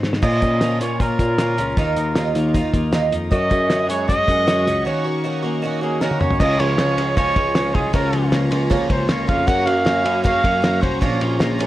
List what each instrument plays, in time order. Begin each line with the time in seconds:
Already playing: clean electric guitar G#2 F#3 C4
0.03 tine electric piano G#2, clean electric guitar C#4, snare
0.13 clean electric guitar D#4, snare
0.22 twelve-string acoustic guitar A#2 F3 A#3 C#4 F4, tine electric piano A#2, trumpet D#5, kick, crash
0.42 tine electric piano A#2, twelve-string acoustic guitar A#3 C#4 F4, kick, closed hi-hat
0.61 twelve-string acoustic guitar A#2 F3 A#3 C#4 F4, tine electric piano A#2, snare, closed hi-hat
0.80 tine electric piano A#2, twelve-string acoustic guitar A#3 C#4 F4, trumpet C#5, closed hi-hat
1.00 twelve-string acoustic guitar F3 A#3 C#4 F4, trumpet A#4, kick, closed hi-hat
1.19 tine electric piano A#2, twelve-string acoustic guitar A#3 C#4 F4, kick, closed hi-hat
1.38 twelve-string acoustic guitar A#2 F3 A#3 C#4 F4, tine electric piano A#2, snare, closed hi-hat
1.58 tine electric piano C#2, twelve-string acoustic guitar A#3 C#4 F4, closed hi-hat
1.77 tine electric piano D#2, twelve-string acoustic guitar D#3 A#3 D#4 F4, trumpet A#4, kick, closed hi-hat
1.96 tine electric piano D#2, twelve-string acoustic guitar A#3 D#4, closed hi-hat
2.15 tine electric piano D#2, twelve-string acoustic guitar D#3 A#3 D#4 F4, snare, closed hi-hat
2.35 tine electric piano D#2, twelve-string acoustic guitar A#3 D#4 F4, closed hi-hat
2.54 twelve-string acoustic guitar D#3 A#3 D#4 F4, kick, closed hi-hat
2.73 tine electric piano D#2, twelve-string acoustic guitar A#3 D#4 F4, kick, closed hi-hat
2.92 tine electric piano D#2, twelve-string acoustic guitar D#3 A#3 D#4 F4, snare, closed hi-hat
3.12 tine electric piano F2, twelve-string acoustic guitar A#3 D#4 F4, closed hi-hat
3.31 tine electric piano F#2, twelve-string acoustic guitar F#3 G#3 C#4 F#4, analog synth pad G#4 C#5 F#5 C#6, trumpet D#5, kick, closed hi-hat
3.50 tine electric piano F#2, twelve-string acoustic guitar G#3 C#4 F#4, kick, closed hi-hat
3.70 tine electric piano F#2, twelve-string acoustic guitar F#3 G#3 C#4 F#4, snare, closed hi-hat
3.89 tine electric piano F#2, twelve-string acoustic guitar G#3 C#4 F#4, trumpet C#5, closed hi-hat
4.08 twelve-string acoustic guitar F#3 G#3 C#4 F#4, trumpet D#5, kick, closed hi-hat
4.27 tine electric piano F#2, twelve-string acoustic guitar G#3 C#4 F#4, kick, closed hi-hat
4.47 tine electric piano F#2, twelve-string acoustic guitar F#3 G#3 C#4 F#4, snare, closed hi-hat
4.66 tine electric piano C#2, twelve-string acoustic guitar G#3 C#4 F#4, closed hi-hat
4.85 twelve-string acoustic guitar D#3 A#3 C#4 F#4, analog synth pad A#4 D#5, trumpet C#5
5.04 twelve-string acoustic guitar A#3 C#4 F#4
5.24 twelve-string acoustic guitar D#3 A#3 C#4 F#4
5.43 twelve-string acoustic guitar A#3 C#4 F#4
5.62 twelve-string acoustic guitar D#3 A#3 C#4 F#4
5.81 twelve-string acoustic guitar A#3 C#4 F#4, trumpet G#4
6.01 twelve-string acoustic guitar D#3 A#3 C#4 F#4, trumpet A#4, snare
6.11 high tom
6.20 twelve-string acoustic guitar A#3 C#4 F#4, trumpet C#5, mid tom
6.31 floor tom
6.40 tine electric piano C#2, twelve-string acoustic guitar C#3 F3 G#3 C#4 F4, analog synth pad F4 C#5 G#5 C#6, trumpet D#5, kick, crash
6.59 tine electric piano C#2, clean electric guitar F3, twelve-string acoustic guitar G#3 C#4 F4, trumpet C#5, ride
6.78 tine electric piano C#2, twelve-string acoustic guitar F3 G#3 C#4 F4, snare, ride
6.97 tine electric piano C#2, twelve-string acoustic guitar G#3 C#4 F4, ride
7.17 twelve-string acoustic guitar C#3 F3 G#3 C#4 F4, trumpet C#5, kick, ride
7.35 tine electric piano C#2, twelve-string acoustic guitar G#3 C#4 F4, kick, ride
7.55 tine electric piano C#2, twelve-string acoustic guitar F3 G#3 C#4 F4, snare, ride
7.74 tine electric piano C2, twelve-string acoustic guitar G#3 C#4 F4, trumpet G#4, kick, ride
7.93 tine electric piano C#2, twelve-string acoustic guitar C#3 F3 A#3 C#4 F4, trumpet A#4, analog synth pad A#5, kick, ride
8.12 tine electric piano C#2, clean electric guitar F3, twelve-string acoustic guitar A#3 C#4 F4, ride
8.32 tine electric piano C#2, twelve-string acoustic guitar F3 A#3 C#4 F4, snare, ride
8.51 tine electric piano C#2, twelve-string acoustic guitar A#3 C#4 F4, ride
8.70 twelve-string acoustic guitar C#3 F3 A#3 C#4 F4, kick, ride
8.89 tine electric piano C#2, twelve-string acoustic guitar A#3 C#4 F4, trumpet C5, kick, ride
9.08 tine electric piano C#2, twelve-string acoustic guitar F3 A#3 C#4 F4, trumpet C#5, snare, ride
9.27 tine electric piano F2, twelve-string acoustic guitar A#3 C#4 F4, trumpet F5, kick, ride
9.47 twelve-string acoustic guitar F#2 C#3 F#3 A#3 C#4 F#4, tine electric piano F#2, analog synth pad F#4 A#5, trumpet F#5, kick, ride
9.66 tine electric piano F#2, twelve-string acoustic guitar F#3 A#3 C#4 F#4, trumpet F5, ride
9.85 tine electric piano F#2, twelve-string acoustic guitar F#3 A#3 C#4 F#4, snare, ride
10.04 tine electric piano F#2, twelve-string acoustic guitar F#3 A#3 C#4 F#4, ride
10.24 twelve-string acoustic guitar F#2 C#3 F#3 A#3 C#4 F#4, trumpet F5, kick, ride
10.42 tine electric piano F#2, twelve-string acoustic guitar F#3 A#3 C#4 F#4, kick, ride
10.62 tine electric piano F#2, twelve-string acoustic guitar F#3 A#3 C#4 F#4, snare, ride
10.81 tine electric piano C2, twelve-string acoustic guitar F#3 A#3 C#4 F#4, trumpet C5, kick, ride
11.01 tine electric piano A#1, twelve-string acoustic guitar A#2 F3 A#3 C#4 F4, analog synth pad F4, trumpet C#5, kick, ride
11.20 tine electric piano A#1, clean electric guitar F3, twelve-string acoustic guitar A#3 C#4 F4, ride
11.39 tine electric piano A#1, twelve-string acoustic guitar F3 A#3 C#4 F4, snare, ride
11.59 tine electric piano A#1, twelve-string acoustic guitar A#3 C#4 F4, ride